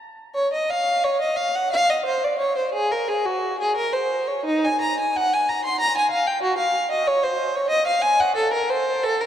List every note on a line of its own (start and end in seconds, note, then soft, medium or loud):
0.35 0.51 C#5 medium
0.53 0.70 D#5 medium
0.70 1.04 F5 loud
1.04 1.21 C#5 loud
1.21 1.38 D#5 medium
1.36 1.54 F5 loud
1.55 1.72 F#5 medium
1.72 1.89 F5 loud
1.90 2.07 D#5 medium
2.05 2.22 C5 medium
2.24 2.41 D5 medium
2.39 2.56 C#5 loud
2.57 2.74 C5 medium
2.73 2.91 G#4 loud
2.91 3.09 A#4 medium
3.08 3.26 G#4 medium
3.25 3.60 F#4 medium
3.60 3.77 G#4 medium
3.76 3.93 A#4 loud
3.93 4.28 C5 medium
4.27 4.46 C#5 medium
4.45 4.63 D#4 loud
4.64 4.82 G#5 medium
4.81 4.98 A#5 loud
5.00 5.15 G#5 medium
5.16 5.32 F#5 loud
5.33 5.49 G#5 medium
5.49 5.64 A#5 medium
5.65 5.80 C6 loud
5.80 5.95 A#5 loud
5.97 6.12 G#5 medium
6.11 6.27 F5 loud
6.27 6.43 G5 medium
6.42 6.58 F#4 loud
6.58 6.90 F5 medium
6.91 7.07 D#5 medium
7.07 7.23 C#5 loud
7.23 7.55 C5 medium
7.56 7.71 C#5 loud
7.70 7.86 D#5 loud
7.87 8.03 F5 loud
8.02 8.19 G#5 loud
8.20 8.36 F#5 loud
8.35 8.52 A4 loud
8.53 8.69 A#4 medium
8.69 9.02 C5 loud
9.03 9.19 A4 loud
9.21 9.26 A#4 medium